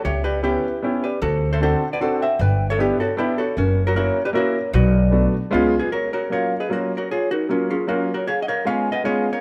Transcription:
0.05 C#2 G4 C#5 E5
0.24 G4 B4 D5
0.43 B3 C#4 E4 G4 B4
0.82 B3 C#4 E4 G4
1.04 G4 B4 D5
1.22 D2 F#4 A4 C5
1.53 A4 C5 E5
1.61 C4 D4 F#4 A4 C5 F#5
1.92 B4 D5 F#5
2.01 C4 D4 F#4 A4 C5 F#5
2.21 C5 E5 G5
2.39 G1 B4 D5 G5
2.69 A4 C#5 E5
2.78 B3 D4 E4 G4 B4 D5
3.00 F#4 A4 C#5
3.17 B3 D4 E4 G4 B4
3.38 F#4 A4 C#5
3.57 F#1 C#4 F#4 A#4
3.86 F#4 A#4 C#5
3.95 A#3 C#4 E4 F#4 A#4 C#5
4.25 G4 B4 D5
4.33 A#3 C#4 E4 F#4 A#4 C#5
4.37 F#4
4.73 B1 F#4 B4 D5
5.11 A3 B3 D4 F#4
5.51 C#2 G#3 B3 C#4 F4 G#4
5.79 F4 G#4 B4
5.92 F#4 A#4 C#5
6.13 F#4 A#4 C#5
6.30 F#3 A#3 C#4 F4 A#4 C#5 F5
6.58 G#4 B4 D#5
6.69 F#3 A#3 C#4 F4 F#4 A#4 C#5
6.96 F#4 A#4 C#5
7.10 F4 G#4 C#5
7.31 D#4 F#4 A#4
7.49 F#3 A#3 C#4 F4 A#4
7.70 C#4 F4 G#4
7.87 F#3 A#3 C#4 F4 F#4 A#4
8.14 F#4 A#4 C#5
8.27 G#4 C#5 F5
8.42 D#5 F#5
8.48 A#4 C#5 F5
8.65 G#3 B3 C#4 F4 C#5 F5 G#5
8.92 B4 D#5 F#5
9.04 G#3 B3 C#4 F4 G#4 C#5 F5
9.32 A#4 C#5 F5

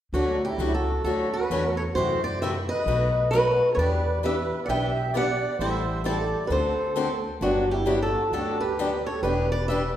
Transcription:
0.13 D2 D3 F#3 A3 C#4 D4 F#4
0.45 E4 G4
0.58 C#2 D3 F#3 A3 C#4 F#4
0.74 F#4 A4
1.03 D2 D3 F#3 A3 C#4 F#4 A4
1.32 F#4 B4
1.50 E2 D3 F#3 A3 C#4 F#4
1.77 A4 C#5
1.94 F#2 C3 E3 A3 F#4 C5
1.98 E4 F#4
2.23 C5 D5
2.40 C3 E3 A3 E4 F#4 C5 E5
2.69 B4 D#5
2.86 B1 B2 F#3 A3 D#4 F#4
3.30 B2 F#3 A3 F#4 B4
3.35 D#4 F#4
3.72 A4 B4 C#5
3.77 E2 E3 B3 D4 G4 D5
4.22 E3 B3 D4 G4 B4 E5
4.64 D5 F#5
4.68 B1 E3 B3 D4 G4 E5 G5
5.13 E3 B3 D4 G4 D5
5.17 F#5
5.59 A1 E3 G3 C4 E4 A4 C5 E5
6.04 E3 G3 C4 E4 A4 D5
6.46 D2 D3 G4 B4
6.51 A3 C4 F#4 A4 C5
6.96 D3 A3 C4 F#4 A4
7.41 G1 D3 F#3 B3 D4 F#4 G4
7.71 E4 G4
7.85 D3 F#3 B3 D4 G4
8.02 F#4 A4
8.30 D2 D3 F#3 B3 D4 F#4 G4 A4
8.59 G4 B4
8.79 D3 F#3 B3 D4 G4
9.04 A4 C#5
9.21 E1 E3 D4 G4 B4
9.25 B3 G4
9.49 B4 D5
9.66 E3 B3 B4 E5
9.70 D4 G4

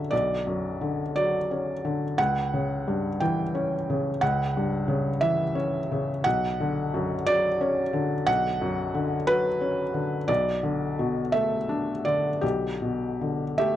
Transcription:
Already playing: B1 F#2 D3 F#3 C#4 D5 E5
0.11 B1 D5
0.47 F#2
0.81 D3
1.16 F#3 D5
1.51 C#4
1.85 D3
2.18 C#2 F#5
2.54 C#3
2.88 G2
3.20 E3 G5
3.55 C#4
3.90 C#3
4.21 C#2 F#5
4.57 G2
4.88 C#3
5.21 E3 E5
5.55 C#4
5.91 C#3
6.24 B1 F#5
6.60 D3
6.94 F#2
7.26 F#3 D5
7.61 C#4
7.93 D3
8.27 B1 F#5
8.62 F#2
8.95 D3
9.27 F#3 B4
9.61 C#4
9.94 D3
10.28 B1 D5
10.63 D3
10.99 B2
11.32 A3 E5
11.69 D4
12.05 D3 D5
12.41 B1 G4
12.82 B2
13.21 D3
13.58 A3 G4 E5

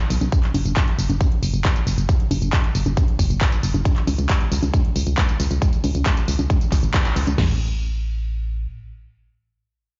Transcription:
0.10 B1, open hi-hat, tambourine
0.21 B1, tambourine, high conga
0.32 kick, closed hi-hat, tambourine
0.43 clap, closed hi-hat
0.54 F#1, open hi-hat, tambourine, high conga
0.65 F#1, tambourine
0.76 kick, clap, closed hi-hat, tambourine
0.88 closed hi-hat
0.99 F#1, open hi-hat, tambourine
1.10 F#1, tambourine, high conga
1.21 kick, closed hi-hat, tambourine
1.32 closed hi-hat
1.43 F#1, open hi-hat, tambourine
1.54 F#1, closed hi-hat, tambourine
1.65 kick, clap, closed hi-hat, tambourine
1.76 closed hi-hat, tambourine
1.87 F#1, open hi-hat, tambourine
1.98 F#1, closed hi-hat, tambourine
2.09 kick, closed hi-hat, tambourine
2.20 closed hi-hat
2.31 F#1, open hi-hat, tambourine, high conga
2.42 F#1, closed hi-hat, tambourine
2.53 kick, clap, closed hi-hat, tambourine
2.64 closed hi-hat
2.75 F#1, open hi-hat, tambourine
2.86 F#1, tambourine, high conga
2.97 kick, closed hi-hat, tambourine
3.08 closed hi-hat
3.19 F#1, kick, open hi-hat, tambourine
3.30 F#1, tambourine
3.41 kick, clap, closed hi-hat, tambourine
3.52 closed hi-hat, tambourine
3.63 F#1, open hi-hat, tambourine
3.74 F#1, tambourine, high conga
3.85 kick, closed hi-hat, tambourine
3.96 clap, closed hi-hat
4.07 C#2, open hi-hat, tambourine, high conga
4.18 C#2, closed hi-hat, tambourine
4.29 kick, clap, closed hi-hat, tambourine
4.41 closed hi-hat
4.52 C#2, open hi-hat, tambourine
4.63 C#2, closed hi-hat, tambourine, high conga
4.74 kick, closed hi-hat, tambourine
4.85 closed hi-hat
4.96 C#2, open hi-hat, tambourine
5.07 C#2, closed hi-hat, tambourine
5.18 kick, clap, closed hi-hat, tambourine
5.29 closed hi-hat, tambourine
5.40 C#2, open hi-hat, tambourine
5.51 C#2, closed hi-hat, tambourine
5.62 kick, closed hi-hat, tambourine
5.73 closed hi-hat, tambourine
5.84 C#2, open hi-hat, tambourine, high conga
5.95 C#2, closed hi-hat, tambourine
6.06 kick, clap, closed hi-hat, tambourine
6.17 closed hi-hat, tambourine
6.28 C#2, open hi-hat, tambourine
6.39 C#2, closed hi-hat, tambourine, high conga
6.50 kick, closed hi-hat, tambourine
6.61 closed hi-hat, tambourine
6.72 C#2, kick, clap, open hi-hat, tambourine
6.83 G#1, closed hi-hat, tambourine
6.94 kick, clap, closed hi-hat, tambourine
7.05 closed hi-hat, tambourine
7.16 C#2, open hi-hat, tambourine
7.27 C#2, tambourine, high conga
7.38 A1, snare, floor tom, crash

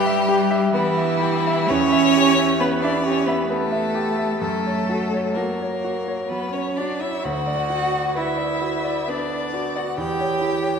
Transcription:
Already playing: G2 G3 G4 B4 E5
0.06 E5
0.29 G4
0.51 E5
0.73 E3 B3 E4
0.97 E5
1.22 G4
1.47 E5
1.68 E2 C#4 C#5
1.92 E5
2.16 G4
2.39 E5
2.60 B3 B4
2.82 D4 D5 E5
3.03 C#4 G4 C#5
3.26 B3 B4 E5
3.48 A3 B3 A4
3.72 E5
3.95 G4
4.18 E5
4.39 F#2 A3 A4
4.66 C#5
4.89 F#4
5.13 C#5
5.35 A#3 F#4 A#4
5.62 C#5
5.84 F#4
6.08 C#5
6.29 F#3 B3 B4
6.53 C#4 C#5
6.76 D4 F#4 D5
7.00 E4 C#5 E5
7.24 D2 F#4 F#5
7.47 D5
7.70 F#4
7.93 D5
8.15 E4 B4 E5
8.37 D5
8.61 F#4
8.84 D5
9.08 B3 D4 D5
9.30 D5
9.54 F#4
9.76 F#4 D5 F#5
9.98 E2 G4 G5
10.20 C#5
10.41 E4
10.63 C#5

